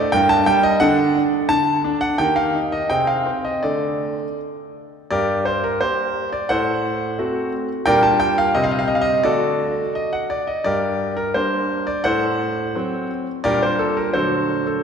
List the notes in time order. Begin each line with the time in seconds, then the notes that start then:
Already playing: A3 D5
0.12 G2 D4 A#4 G5
0.29 A5
0.46 G3 G5
0.63 D#5
0.80 D3 D4 A4 F#5
1.16 D4
1.49 D3 A5
1.84 D4
2.01 F#5
2.18 D#3 A#3 G4 G5
2.36 F5
2.55 D#4
2.72 D#5
2.90 C3 C4 G#4 G5
3.07 F5
3.26 C4
3.45 D#5
3.63 D3 A3 A4 D5
5.11 G2 G4 A#4 D5
5.45 C5
5.64 A#4
5.81 A#3 G4 C5
6.33 D5
6.49 A2 A4 C5 F#5
7.18 A3 C4 F#4
7.86 A#2 G3 D4 G4 A#4 D5 G5
8.03 A5
8.20 G5
8.38 F5
8.55 C3 G3 C4 G4 D#5
8.64 F5
8.71 D#5
8.79 F5
8.88 D#5
8.95 F5
9.01 D#5
9.24 D3 A3 D4 F#4 A4 D5
9.95 D#5
10.13 F#5
10.30 D5
10.47 D#5
10.64 G2 G4 A#4 D5
11.17 A#4
11.34 G3 A#3 D4 C5
11.87 D5
12.04 A2 A4 C5 F#5
12.75 F#3 C4
13.44 A#2 G3 A#3 D4 G4 A#4 D5
13.63 C5
13.79 A4
13.97 A#4
14.13 D3 F#3 A3 D4 F#4 A4 C5
14.67 A4